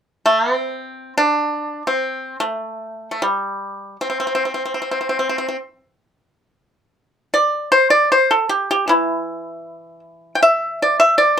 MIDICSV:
0, 0, Header, 1, 2, 480
1, 0, Start_track
1, 0, Tempo, 500000
1, 10943, End_track
2, 0, Start_track
2, 0, Title_t, "Pipa"
2, 0, Program_c, 0, 105
2, 246, Note_on_c, 0, 57, 55
2, 515, Note_off_c, 0, 57, 0
2, 515, Note_on_c, 0, 60, 55
2, 1084, Note_off_c, 0, 60, 0
2, 1128, Note_on_c, 0, 62, 65
2, 1747, Note_off_c, 0, 62, 0
2, 1796, Note_on_c, 0, 60, 53
2, 2261, Note_off_c, 0, 60, 0
2, 2305, Note_on_c, 0, 57, 56
2, 2962, Note_off_c, 0, 57, 0
2, 2988, Note_on_c, 0, 57, 41
2, 3070, Note_off_c, 0, 57, 0
2, 3091, Note_on_c, 0, 55, 53
2, 3802, Note_off_c, 0, 55, 0
2, 3850, Note_on_c, 0, 60, 52
2, 3922, Note_off_c, 0, 60, 0
2, 3933, Note_on_c, 0, 60, 39
2, 4006, Note_off_c, 0, 60, 0
2, 4031, Note_on_c, 0, 60, 42
2, 4087, Note_off_c, 0, 60, 0
2, 4098, Note_on_c, 0, 60, 37
2, 4163, Note_off_c, 0, 60, 0
2, 4175, Note_on_c, 0, 60, 42
2, 4257, Note_off_c, 0, 60, 0
2, 4274, Note_on_c, 0, 60, 33
2, 4349, Note_off_c, 0, 60, 0
2, 4361, Note_on_c, 0, 60, 37
2, 4438, Note_off_c, 0, 60, 0
2, 4469, Note_on_c, 0, 60, 33
2, 4537, Note_off_c, 0, 60, 0
2, 4553, Note_on_c, 0, 60, 35
2, 4613, Note_off_c, 0, 60, 0
2, 4625, Note_on_c, 0, 60, 31
2, 4703, Note_off_c, 0, 60, 0
2, 4718, Note_on_c, 0, 60, 35
2, 4794, Note_off_c, 0, 60, 0
2, 4807, Note_on_c, 0, 60, 32
2, 4877, Note_off_c, 0, 60, 0
2, 4889, Note_on_c, 0, 60, 38
2, 4969, Note_off_c, 0, 60, 0
2, 4983, Note_on_c, 0, 60, 34
2, 5061, Note_off_c, 0, 60, 0
2, 5083, Note_on_c, 0, 60, 40
2, 5156, Note_off_c, 0, 60, 0
2, 5167, Note_on_c, 0, 60, 37
2, 5243, Note_off_c, 0, 60, 0
2, 5266, Note_on_c, 0, 60, 38
2, 5338, Note_off_c, 0, 60, 0
2, 7043, Note_on_c, 0, 74, 67
2, 7398, Note_off_c, 0, 74, 0
2, 7409, Note_on_c, 0, 72, 69
2, 7583, Note_off_c, 0, 72, 0
2, 7587, Note_on_c, 0, 74, 68
2, 7775, Note_off_c, 0, 74, 0
2, 7793, Note_on_c, 0, 72, 66
2, 7972, Note_off_c, 0, 72, 0
2, 7975, Note_on_c, 0, 69, 62
2, 8151, Note_off_c, 0, 69, 0
2, 8154, Note_on_c, 0, 67, 59
2, 8337, Note_off_c, 0, 67, 0
2, 8359, Note_on_c, 0, 67, 64
2, 8517, Note_off_c, 0, 67, 0
2, 8521, Note_on_c, 0, 52, 46
2, 8537, Note_on_c, 0, 64, 53
2, 9594, Note_off_c, 0, 64, 0
2, 9939, Note_on_c, 0, 79, 54
2, 10004, Note_off_c, 0, 79, 0
2, 10008, Note_on_c, 0, 76, 64
2, 10351, Note_off_c, 0, 76, 0
2, 10391, Note_on_c, 0, 74, 63
2, 10553, Note_off_c, 0, 74, 0
2, 10556, Note_on_c, 0, 76, 65
2, 10728, Note_off_c, 0, 76, 0
2, 10732, Note_on_c, 0, 74, 65
2, 10735, Note_off_c, 0, 52, 0
2, 10914, Note_off_c, 0, 74, 0
2, 10943, End_track
0, 0, End_of_file